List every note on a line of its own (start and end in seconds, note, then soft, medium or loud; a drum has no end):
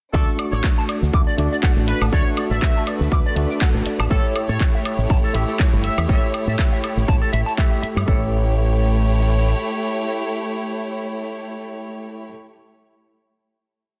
0.13 0.23 D2 loud
0.13 1.35 A3 loud
0.13 8.04 A3 medium
0.13 1.35 D4 medium
0.13 4.07 D4 medium
0.13 4.07 F#4 medium
0.13 1.36 F#4 medium
0.13 0.30 A4 medium
0.13 0.24 D5 loud
0.13 1.36 C#6 loud
0.13 kick loud
0.13 cabasa medium
0.28 cabasa soft
0.39 0.46 D5 medium
0.39 open hi-hat loud
0.39 high woodblock medium
0.52 0.60 A1 medium
0.52 0.67 C#5 medium
0.52 0.56 D5 loud
0.52 cabasa medium
0.64 kick loud
0.64 clap loud
0.64 cabasa medium
0.78 0.83 A5 medium
0.78 cabasa soft
0.89 0.95 D5 medium
0.89 open hi-hat loud
0.89 high woodblock medium
1.02 1.09 D2 medium
1.02 cabasa medium
1.13 1.22 D2 medium
1.13 1.20 D6 medium
1.13 kick loud
1.13 cabasa medium
1.27 1.35 D5 loud
1.27 cabasa soft
1.38 1.47 D2 medium
1.38 2.10 A3 medium
1.38 2.10 D4 medium
1.38 2.10 F#4 medium
1.38 2.11 D5 loud
1.38 open hi-hat loud
1.52 1.55 D5 loud
1.52 cabasa medium
1.63 1.70 F#5 medium
1.63 kick loud
1.63 clap loud
1.63 cabasa medium
1.76 1.91 A1 medium
1.76 cabasa soft
1.88 2.04 B4 loud
1.88 1.95 D5 medium
1.88 open hi-hat loud
2.01 2.08 A1 medium
2.01 2.05 A5 loud
2.01 cabasa medium
2.01 high woodblock medium
2.12 2.21 D2 medium
2.12 3.34 A3 loud
2.12 3.34 D4 medium
2.12 3.34 F#4 medium
2.12 4.09 B4 medium
2.12 2.29 C#5 medium
2.12 2.23 D5 loud
2.12 3.35 C#6 loud
2.12 kick loud
2.12 cabasa medium
2.27 cabasa soft
2.37 2.44 D5 medium
2.37 open hi-hat loud
2.37 high woodblock medium
2.51 2.58 A1 medium
2.51 2.54 D5 loud
2.51 2.87 E5 loud
2.51 cabasa medium
2.62 kick loud
2.62 clap loud
2.62 cabasa medium
2.76 2.82 A5 medium
2.76 cabasa soft
2.87 2.94 D5 medium
2.87 open hi-hat loud
2.87 high woodblock medium
3.00 3.08 D2 medium
3.00 cabasa medium
3.12 3.20 D2 loud
3.12 3.19 D6 medium
3.12 kick loud
3.12 cabasa medium
3.26 3.34 D5 loud
3.26 cabasa soft
3.36 3.45 D2 medium
3.36 4.08 A3 medium
3.36 4.08 D4 medium
3.36 4.08 F#4 medium
3.36 4.09 D5 loud
3.36 open hi-hat loud
3.50 3.54 D5 loud
3.50 cabasa medium
3.61 3.68 F#5 medium
3.61 kick loud
3.61 clap loud
3.61 cabasa medium
3.74 3.85 A1 medium
3.74 cabasa soft
3.86 3.93 D5 medium
3.86 muted fingered electric bass stroke soft
3.86 open hi-hat loud
4.00 4.07 A1 loud
4.00 4.03 A5 loud
4.00 cabasa medium
4.00 high woodblock medium
4.10 4.19 A1 loud
4.10 5.32 A3 medium
4.10 8.04 E4 medium
4.10 5.32 E4 medium
4.10 5.32 G4 medium
4.10 8.04 G4 medium
4.10 4.21 A4 loud
4.10 4.27 A4 medium
4.10 8.04 C#5 medium
4.10 5.33 C#5 loud
4.10 kick loud
4.10 cabasa medium
4.25 cabasa soft
4.36 4.43 A4 medium
4.36 open hi-hat loud
4.36 high woodblock medium
4.48 4.56 A2 medium
4.48 4.53 A4 loud
4.48 4.63 C#5 loud
4.48 cabasa medium
4.60 kick loud
4.60 clap loud
4.60 cabasa medium
4.75 4.80 E5 medium
4.75 cabasa soft
4.85 4.92 A4 medium
4.85 open hi-hat loud
4.85 high woodblock medium
4.98 5.06 A1 medium
4.98 cabasa medium
5.10 5.19 A1 loud
5.10 5.17 A5 medium
5.10 kick loud
5.10 cabasa medium
5.24 5.32 A4 loud
5.24 cabasa soft
5.34 5.43 A1 medium
5.34 6.06 A3 medium
5.34 6.06 E4 medium
5.34 6.07 G4 medium
5.34 6.07 E5 loud
5.34 open hi-hat loud
5.48 5.52 A4 loud
5.48 cabasa medium
5.60 5.67 C#5 medium
5.60 kick loud
5.60 clap loud
5.60 cabasa medium
5.73 5.88 G1 medium
5.73 cabasa soft
5.84 5.91 A4 medium
5.84 6.01 E5 loud
5.84 open hi-hat loud
5.98 6.05 E2 loud
5.98 6.01 E5 loud
5.98 cabasa medium
5.98 high woodblock medium
6.08 6.18 A1 loud
6.08 7.30 A3 loud
6.08 7.30 E4 medium
6.08 7.31 G4 medium
6.08 6.19 A4 loud
6.08 7.31 C#5 loud
6.08 6.26 E5 loud
6.08 kick loud
6.08 cabasa medium
6.23 cabasa soft
6.34 6.41 A4 medium
6.34 open hi-hat loud
6.34 high woodblock medium
6.47 6.54 A2 medium
6.47 6.51 A4 loud
6.47 6.55 E5 medium
6.47 cabasa medium
6.59 6.67 E5 medium
6.59 kick loud
6.59 clap loud
6.59 cabasa medium
6.72 6.78 E5 medium
6.72 cabasa soft
6.83 6.90 A4 medium
6.83 open hi-hat loud
6.83 high woodblock medium
6.97 7.04 A1 medium
6.97 cabasa medium
7.08 7.17 A1 loud
7.08 7.15 A5 medium
7.08 kick loud
7.08 cabasa medium
7.22 7.30 A4 loud
7.22 cabasa soft
7.33 7.42 A1 medium
7.33 7.40 E5 loud
7.33 open hi-hat loud
7.46 7.52 A5 medium
7.46 cabasa medium
7.58 8.05 A3 medium
7.58 8.05 E4 medium
7.58 8.05 G4 medium
7.58 7.65 A4 medium
7.58 8.05 E5 loud
7.58 kick loud
7.58 clap loud
7.58 cabasa medium
7.71 7.77 E5 medium
7.71 cabasa soft
7.82 7.87 E5 loud
7.82 muted fingered electric bass stroke soft
7.82 open hi-hat loud
7.96 8.03 G2 medium
7.96 8.02 C#5 medium
7.96 cabasa medium
7.96 high woodblock medium
8.06 9.52 A1 loud
8.06 12.26 A3 medium
8.06 12.28 A3 medium
8.06 12.28 E4 medium
8.06 12.29 G4 medium
8.06 8.31 A4 medium
8.06 12.28 C#5 medium
8.06 12.30 C#5 medium
8.06 kick loud